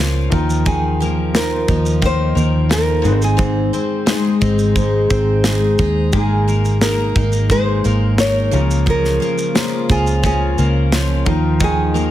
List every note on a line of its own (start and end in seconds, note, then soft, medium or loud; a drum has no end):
0.00 0.28 C#2 loud
0.00 0.32 C#3 medium
0.00 0.31 F3 medium
0.00 0.69 F3 medium
0.00 0.34 G#3 medium
0.00 0.34 A#3 medium
0.00 1.02 A#3 medium
0.00 2.02 A#3 medium
0.00 0.33 C#4 medium
0.00 0.39 C#4 medium
0.00 0.32 F4 medium
0.00 0.69 F4 medium
0.00 0.38 G#4 medium
0.00 0.34 C#5 medium
0.30 1.65 D#2 loud
0.30 0.66 D#3 medium
0.30 0.64 F3 medium
0.30 1.13 D#4 medium
0.30 1.14 F4 medium
0.30 1.14 A#4 loud
0.30 kick loud
0.30 shaker medium
0.50 shaker medium
0.66 2.01 D#3 medium
0.66 0.99 F3 medium
0.66 1.36 G#4 medium
0.66 kick loud
0.66 shaker medium
1.00 1.67 F3 medium
1.00 2.34 A#3 medium
1.00 shaker medium
1.33 2.68 F3 medium
1.33 2.42 D#4 medium
1.33 4.76 D#4 medium
1.33 2.43 F4 medium
1.33 2.43 A#4 medium
1.33 2.05 A#4 medium
1.33 snare loud
1.33 shaker medium
1.68 2.33 D#2 loud
1.68 2.36 F3 medium
1.68 4.41 D#4 medium
1.68 kick medium
1.68 shaker medium
1.86 shaker medium
2.02 5.52 D#3 medium
2.02 2.71 A#3 medium
2.02 2.69 C5 loud
2.02 kick medium
2.02 shaker medium
2.35 3.06 D#2 loud
2.35 3.12 F3 medium
2.35 3.11 A#3 medium
2.35 shaker medium
2.69 3.11 F3 medium
2.69 3.24 A#4 loud
2.69 snare loud
2.69 shaker medium
3.02 3.69 G#1 medium
3.02 3.36 G#2 medium
3.02 3.38 C4 medium
3.02 3.87 D#4 medium
3.02 3.87 G#4 medium
3.02 shaker medium
3.06 3.12 B4 medium
3.12 3.91 C5 medium
3.22 5.42 G#4 medium
3.22 shaker medium
3.37 4.74 G#2 medium
3.37 3.72 C4 medium
3.37 kick loud
3.37 shaker medium
3.73 4.41 C4 medium
3.73 5.09 C4 medium
3.73 shaker medium
4.06 5.43 G#3 medium
4.06 5.16 D#4 medium
4.06 5.79 G#4 medium
4.06 5.16 G#4 medium
4.06 5.17 C5 medium
4.06 snare loud
4.06 shaker medium
4.41 5.06 G#1 loud
4.41 5.09 C4 medium
4.41 5.79 D#4 medium
4.41 kick medium
4.41 shaker medium
4.59 shaker medium
4.75 6.20 G#2 medium
4.75 5.44 D#4 medium
4.75 kick medium
4.75 shaker medium
5.10 5.75 G#1 medium
5.10 6.13 C4 medium
5.10 6.20 C4 medium
5.10 kick medium
5.10 shaker soft
5.44 6.13 G#3 medium
5.44 7.50 D#4 medium
5.44 snare loud
5.44 shaker medium
5.79 6.10 D#2 medium
5.79 7.16 D#4 medium
5.79 6.51 G#4 medium
5.79 kick medium
5.79 shaker medium
6.13 7.12 G#1 loud
6.13 7.51 G#3 medium
6.13 6.47 A#3 medium
6.13 6.67 D#4 medium
6.13 6.81 G#4 medium
6.13 6.67 G#4 medium
6.13 6.68 A#4 medium
6.13 kick loud
6.13 shaker medium
6.48 7.16 A#3 medium
6.48 6.83 A#3 medium
6.48 shaker soft
6.65 shaker medium
6.81 7.85 A#3 medium
6.81 7.90 D#4 medium
6.81 7.90 G#4 medium
6.81 9.23 G#4 medium
6.81 7.51 A#4 medium
6.81 7.91 A#4 medium
6.81 snare loud
6.81 shaker medium
7.16 7.80 G#1 loud
7.16 7.84 A#3 medium
7.16 8.60 D#4 medium
7.16 kick medium
7.16 shaker medium
7.32 shaker medium
7.50 9.25 G#3 medium
7.50 8.17 D#4 medium
7.50 8.19 C5 loud
7.50 kick medium
7.50 shaker medium
7.84 8.49 G#1 loud
7.84 9.19 A#3 medium
7.84 8.19 A#3 medium
7.84 shaker medium
8.18 9.21 A#3 medium
8.18 8.59 D#4 medium
8.18 8.89 C#5 loud
8.18 snare loud
8.18 shaker medium
8.51 9.17 C#2 loud
8.51 8.87 C#3 medium
8.51 8.86 F3 medium
8.51 9.34 G#3 medium
8.51 9.34 A#3 medium
8.51 9.34 C#4 medium
8.51 9.35 F4 medium
8.51 9.35 A#4 medium
8.51 shaker medium
8.71 shaker medium
8.86 10.23 C#3 medium
8.86 11.26 F3 medium
8.86 9.91 A#4 loud
8.86 kick loud
8.86 shaker medium
9.05 snare soft
9.20 9.89 A#3 medium
9.20 10.58 A#3 medium
9.20 shaker soft
9.38 shaker medium
9.54 10.93 F3 medium
9.54 10.63 G#3 medium
9.54 10.63 A#3 medium
9.54 10.63 C#4 medium
9.54 10.64 F4 medium
9.54 11.33 G#4 medium
9.54 10.64 A#4 medium
9.54 snare loud
9.54 shaker medium
9.89 10.54 C#2 medium
9.89 10.58 A#3 medium
9.89 11.64 F4 medium
9.89 10.25 G#4 medium
9.89 kick loud
9.89 shaker medium
10.07 shaker medium
10.23 11.26 C#3 medium
10.23 10.91 C#4 medium
10.23 10.89 G#4 medium
10.23 kick medium
10.23 shaker medium
10.58 11.23 C#2 loud
10.58 12.11 A#3 medium
10.58 11.94 A#3 medium
10.58 shaker medium
10.92 11.64 F3 medium
10.92 11.33 C#4 medium
10.92 snare loud
10.92 shaker medium
11.25 12.11 D#2 loud
11.25 11.60 D#3 medium
11.25 11.59 F3 medium
11.25 12.08 D#4 medium
11.25 12.08 F4 medium
11.25 12.09 A#4 loud
11.25 kick loud
11.25 shaker medium
11.60 12.11 D#3 medium
11.60 11.94 F3 medium
11.60 12.11 G#4 medium
11.60 kick loud
11.60 shaker medium
11.94 12.11 F3 medium
11.94 12.11 A#3 medium
11.94 shaker medium